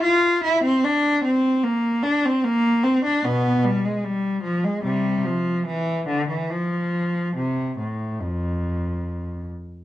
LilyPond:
\new Staff \with { instrumentName = "Cello" } { \clef bass \time 4/4 \key f \major \tempo 4 = 74 f'8 e'16 c'16 d'8 c'8 bes8 d'16 c'16 bes8 c'16 d'16 | <b, b>8 g16 aes16 g8 f16 aes16 <c g>8 f8 e8 d16 e16 | f4 c8 a,8 f,4. r8 | }